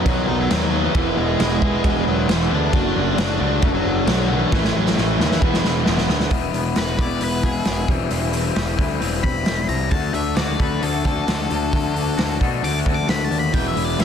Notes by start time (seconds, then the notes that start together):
Already playing: F#3 B3 D#4
0.04 B1 B2 D#3 F#3 B3 D#4, kick, crash
0.08 F#4
0.28 B1 D#4 D#5
0.39 F#3 F#4
0.49 D#2 D#3 F#3 B3 D#4 F#4, snare, crash
0.71 F#3 B3 D#4
0.84 E3 E4
0.93 E1 E3 G#3 B3 E4, kick, crash
1.17 E1 G#3 B3 E4 G#4
1.38 E1 E3 G#3 B3 E4, snare, crash
1.61 E1 G#3 B3 E4, kick
1.83 E1 E3 G#3 B3 E4, kick, crash
2.06 E1 F#3 F#4
2.27 E1 E3 G#3 B3 E4, snare, crash
2.50 D2 G#3 B3 D4 E4 D5
2.72 F#1 F#3 A3 D4 F#4, kick, crash
2.96 F#1 A3 D4 F#4
3.16 F#1 F#3 A3 D4 F#4, snare, crash
3.39 C#2 A3 D4 F#4
3.61 F#1 F#3 A3 D4 F#4 A4, kick, crash
3.74 F#3 F#4
3.85 F#1
4.06 B1 F#3 A3 D4 F#4, snare, crash
4.29 E3 A3 D4 E4 F#4
4.52 A1 A2 E3 A3 C#4 E4, kick, snare
4.64 snare
4.75 A1 F#3 A3 C#4 E4 F#4
4.86 snare
4.96 A1 A2 E3 A3 C#4 E4, snare
5.18 D#2 E3 A3 C#4 E4, snare
5.31 snare
5.41 E1 E3 G#3 B3 E4, kick
5.54 snare
5.64 E1, snare
5.85 E1 E3 G#3 B3 E4, snare
5.98 snare
6.07 D2 G#3 B3 E4, snare
6.20 snare
6.30 E1 E2 E3 G#3 B3 E4, kick, open hi-hat
6.53 E1 E3 G#3 B3 E4, open hi-hat
6.76 E1 E3 G#3 B3 E4 F#4 B4, snare, open hi-hat
6.98 E1 E3 G#3 B3 E4 D5, kick, open hi-hat
7.20 E1 E3 G#3 B3 E4 B4, open hi-hat
7.43 E3 G#3 B3 E4 G#4, kick, open hi-hat
7.65 E1 E3 G#3 B3 E4, snare, open hi-hat
7.88 E1 E3 G3 C4 E4, kick, open hi-hat
8.11 E1 E3 G3 C4 E4, open hi-hat
8.33 E3 G3 C4 E4, open hi-hat
8.55 E1 E3 G3 C4 E4 G4, snare, open hi-hat
8.78 D2 E3 G3 C4 E4, kick, open hi-hat
9.00 E1 E3 G3 C4 E4, open hi-hat
9.23 E1 E3 G3 C4 E4 B5, kick, open hi-hat
9.46 E1 E3 G3 C4 E4, snare, open hi-hat
9.69 C2 D3 E3 G3 C4 E4 A#5, open hi-hat
9.91 D2 D3 A3 D4 F#4 A5, kick, open hi-hat
10.13 D2 D3 A3 D4 F#4 E5, open hi-hat
10.36 D2 D3 A3 D4 F#4 D5, snare, open hi-hat
10.58 D2 D3 A3 D4 F#4 A4 B4, kick, open hi-hat
10.81 D2 D3 A3 D4 F#4 A4, open hi-hat
11.03 D3 A3 D4 F#4 A4, kick, open hi-hat
11.26 D2 D3 A3 D4 F#4, snare, open hi-hat
11.49 D2 D3 A3 D4 F#4, open hi-hat
11.72 D2 D3 A3 D4 F#4, kick, open hi-hat
11.94 D3 A3 D4 F#4, open hi-hat
12.17 D2 D3 A3 D4 F#4, snare, open hi-hat
12.40 B2 D3 A3 D4 F#4 A4, kick, open hi-hat
12.62 D2 D3 A3 D4 F#4 D6, open hi-hat
12.85 D2 D3 A3 D4 F#4 A4, kick, open hi-hat
12.94 D6
13.07 D2 D3 A3 D4 F#4 B5, snare, open hi-hat
13.24 A5
13.30 D#2 D3 A3 D4 F#4, open hi-hat
13.39 B5
13.53 E1 E2 B2 E3 G#3 B3 E4 G5, kick, open hi-hat
13.68 E5
13.76 E1 E2 B2 E3 G#3 B3 E4, open hi-hat
13.84 D5
13.98 E1 E2 B2 E3 G#3 B3 E4 E5, snare, open hi-hat